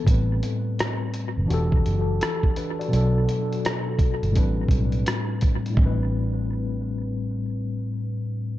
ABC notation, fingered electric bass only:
X:1
M:4/4
L:1/16
Q:"Swing 16ths" 1/4=84
K:Ador
V:1 name="Fingered electric bass" clef=bass
A,,,2 z4 z F,,, E,,,2 F,,,2 z4 | B,,,2 z4 z G,,, A,,,2 B,,,2 z4 | A,,,16 |]